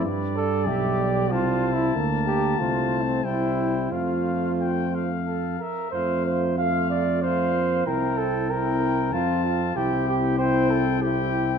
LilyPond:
<<
  \new Staff \with { instrumentName = "Trumpet" } { \time 3/4 \key f \major \tempo 4 = 94 d''2 a''4~ | a''2 g''4 | f''4 g''8 f''4 e''8 | f''4 f''4 f''4 |
g''4 g''4 a''4 | g''4 g''4 g''4 | }
  \new Staff \with { instrumentName = "Flugelhorn" } { \time 3/4 \key f \major b'8 d''8 e''8 d''8 c''4 | bes'4 c''4 c''4 | c''2 a'8 bes'8 | c''8 c''8 f''8 d''8 c''4 |
bes'8 a'8 bes'4 f'8 f'8 | g'8 g'8 c''8 a'8 g'4 | }
  \new Staff \with { instrumentName = "French horn" } { \time 3/4 \key f \major g2. | bes4 a4 g4 | a2~ a8 r8 | f'4 f'4 f'4 |
e'4 e'4 f'4 | e'4 e'4 e'4 | }
  \new Staff \with { instrumentName = "Trombone" } { \time 3/4 \key f \major r8 a'8 g'4 \tuplet 3/2 { f'4 e'8 } | r8 g'8 \tuplet 3/2 { f'4 c'8 } e'4 | f'2 r4 | a4 a4 a8 bes8 |
c'4 c'4 c'4 | c'4 c'4 c'4 | }
  \new Staff \with { instrumentName = "Tuba" } { \clef bass \time 3/4 \key f \major g,4 b,,4 c,4 | d,4 c,4 c,4 | f,2~ f,8 r8 | f,2. |
c,2 f,4 | c,2. | }
>>